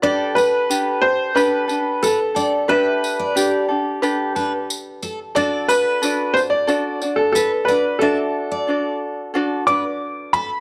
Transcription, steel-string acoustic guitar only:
X:1
M:4/4
L:1/16
Q:1/4=90
K:G
V:1 name="Steel-string acoustic guitar"
A2 B4 z6 B z d z | e z2 d3 z4 B z3 A z | A2 B4 z6 B z d z | e z2 d3 z4 B z3 A z |]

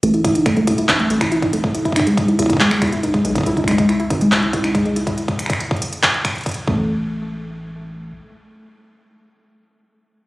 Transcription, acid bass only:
X:1
M:4/4
L:1/8
Q:1/4=140
K:Alyd
V:1 name="Acid bass" clef=bass
A,,,3 E,,, A,,, A,,,3 | z3 E,, z E,, E,,, B,,, | C,,3 G,,, C,, C,,3 | z6 z A,,,- |
A,,,6 z2 | z8 |]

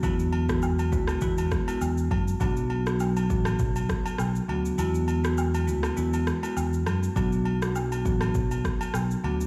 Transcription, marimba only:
X:1
M:4/4
L:1/16
Q:"Swing 16ths" 1/4=101
K:Bdor
V:1 name="Marimba"
[G,B,EF]3 [G,B,EF]3 [G,B,EF]2 [G,B,EF]3 [G,B,EF] z4 | [F,B,DF]3 [F,B,DF] z2 [F,B,DF] z6 z [F,B,DF] z | [G,B,EF]3 [G,B,EF]3 [G,B,EF]2 [G,B,EF]3 [G,B,EF] z4 | [F,B,DF]3 [F,B,DF] z2 [F,B,DF] z6 z [F,B,DF] z |]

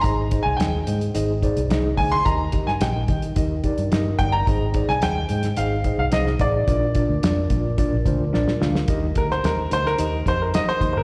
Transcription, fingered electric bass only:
X:1
M:4/4
L:1/16
Q:1/4=109
K:Eb
V:1 name="Fingered electric bass" clef=bass
A,,,3 C,, E,,2 A,,2 A,,,3 C,, C,,2 D,,2 | E,,3 G,, B,,,2 E,2 E,,3 G,, G,,2 G,,,2 | A,,,3 C,, E,,2 A,,2 A,,,3 C,, C,,2 =A,,,2 | B,,,3 D,, F,,2 B,,2 z B,,, D,, D,, B,,, z D,,2 |
E,,2 D,,2 E,,2 D,,2 E,,2 F,,3 z E,, G,,, |]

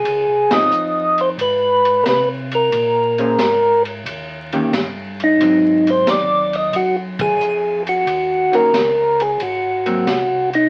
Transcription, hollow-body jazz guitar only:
X:1
M:4/4
L:1/8
Q:"Swing" 1/4=90
K:Abmix
V:1 name="Hollow-body jazz guitar"
z [F,CE]3 z4 | z [B,DAc] z3 [E,B,D=G] z2 | [G,CE]4- [G,CE] z3 | z [E,B,DG] z3 [G,B,C] z2 |]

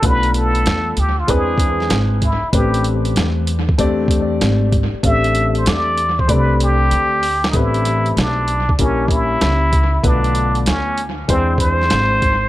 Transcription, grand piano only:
X:1
M:4/4
L:1/8
Q:"Swing 16ths" 1/4=96
K:Am
V:1 name="Grand piano"
[A,B,^CDFB]3 z [^G,=CDEB]3 z | [A,CDGB]3 z [A,CDGd]3 z | [A,CDGA]3 z [A,CDGd]3 z | [A,B,CDGB]3 z [G,^A,^CE^A]3 z |
[D,A,B,FB]3 z [^G,CDEc]3 z |]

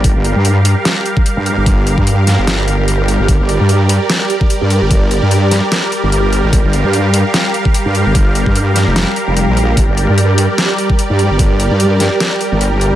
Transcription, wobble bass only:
X:1
M:4/4
L:1/16
Q:"Swing 16ths" 1/4=148
K:Gm
V:1 name="Wobble bass" clef=bass
G,,, G,,,2 G,,4 z6 G,,2 G,,,- | G,,,3 G,,4 G,,,8 G,,, | G,,, G,,,2 G,,4 z6 G,,2 G,,,- | G,,,3 G,,4 z4 G,,,4 _A,,, |
G,,, G,,,2 G,,4 z6 G,,2 G,,,- | G,,,3 G,,4 F,,,2 z2 F,,,2 B,,,3 | G,,, G,,,2 G,,4 z6 G,,2 G,,,- | G,,,3 G,,4 z4 G,,,4 _A,,, |]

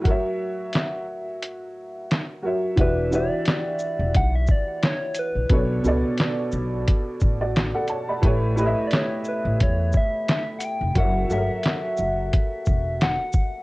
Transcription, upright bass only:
X:1
M:4/4
L:1/16
Q:"Swing 16ths" 1/4=88
K:Edor
V:1 name="Upright bass" clef=bass
z16 | E,,,3 z4 E,,, B,,,2 z4 z ^A,,, | B,,,2 C,, z3 B,,,2 z2 A,,,3 z3 | A,,,3 z4 A,,, E,,2 z4 z ^E,,, |
F,,,2 G,,, z3 F,,,2 z2 E,,,3 z3 |]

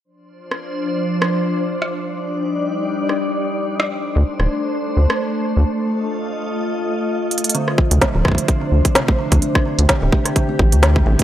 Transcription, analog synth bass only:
X:1
M:4/4
L:1/16
Q:"Swing 16ths" 1/4=128
K:Dphr
V:1 name="Analog synth bass" clef=bass
z16 | z16 | z3 D,, z D,,, z4 D,, z4 D,, | z16 |
z3 D,, z D,,, z4 D,, z4 D,, | z3 D,, z D,,, z4 A,,, D,,3 A,,, z |]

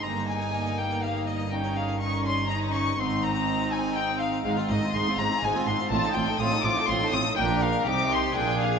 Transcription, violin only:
X:1
M:3/4
L:1/8
Q:1/4=123
K:Ab
V:1 name="Violin"
b a2 g f e | g f d' c' b d' | c' b2 a g f | [K:Fdor] f e c' b a c' |
=a g e' d' c' e' | g f d' c' g f |]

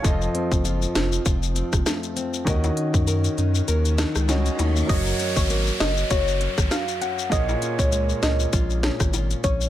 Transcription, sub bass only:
X:1
M:4/4
L:1/16
Q:"Swing 16ths" 1/4=99
K:Gblyd
V:1 name="Sub bass" clef=bass
F,,,2 z G,,,3 F,,,2 F,,,3 G,,, z4 | E,,2 z G,,3 G,,2 E,,3 D,,3 E,,2 | G,,,2 z A,,,3 G,,,2 G,,,3 A,,, z4 | B,,,2 z D,,3 D,,2 B,,,3 A,,,3 B,,,2 |]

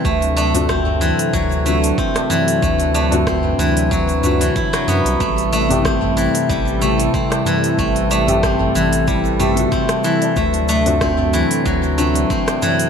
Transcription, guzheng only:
X:1
M:4/4
L:1/16
Q:"Swing 16ths" 1/4=93
K:Dmix
V:1 name="Guzheng"
A,2 A,2 C z E, z F,2 A,2 C z E, z | A,2 A,2 C z E, z F, z A, E, E F, B, z | A,2 A,2 C z E, z G,2 A,2 C z E, z | A,2 A,2 C z E, z G,2 A,2 C z E, z |
A,2 A,2 C z E, z F,2 A,2 C z E, z |]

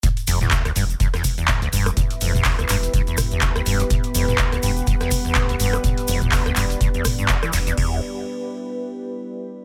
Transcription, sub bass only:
X:1
M:4/4
L:1/8
Q:"Swing 16ths" 1/4=124
K:Em
V:1 name="Sub bass" clef=bass
z E,,, z E,,, z E,,, z E,,, | z E,,, z E,,, z E,,, z E,,, | z E,,, z E,,, z E,,, z E,,, | z E,,, z E,,, z E,,, z E,,, |
E,,, z6 z |]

